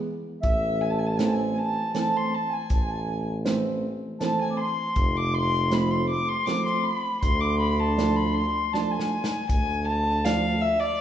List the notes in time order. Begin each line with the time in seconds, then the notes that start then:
0.42 A1 E5, kick, closed hi-hat
0.46 E5
0.81 G#5
0.90 A5
0.98 G#5
1.06 A5
1.17 E3 A3 C4 G#5, snare, closed hi-hat
1.24 G#5 A5
1.33 G#5
1.60 A5
1.93 E3 A3 C4 A5, snare, closed hi-hat
2.17 C6
2.34 A5
2.49 G#5
2.54 G#5
2.58 A5
2.65 G#5
2.70 A1, kick, closed hi-hat
2.75 A5
2.82 G#5
2.90 A5
2.97 G#5
3.45 E3 A3 C4, snare, closed hi-hat
4.20 E3 A3 C4 A5, snare, closed hi-hat
4.41 G#5
4.51 D6
4.58 C6
4.95 F1, kick, closed hi-hat
5.17 D6
5.34 C6
5.71 F3 A3 C4 B5, snare, closed hi-hat
5.91 C6
6.10 D6
6.27 C6
6.46 F3 A3 C4 D6, snare, closed hi-hat
6.66 C6
6.83 B5
7.21 D2 C6, kick, closed hi-hat
7.41 D6
7.59 B5
7.71 B5
7.79 A5
7.98 F3 A3 D4, snare, closed hi-hat
8.16 B5
8.34 C6
8.72 F3 A3 D4 A5, snare
8.90 G#5
8.99 snare
9.24 snare
9.49 D2 G#5, kick, closed hi-hat
9.87 A5
10.24 F3 A3 D4 F5, snare, closed hi-hat
10.61 E5
10.80 D5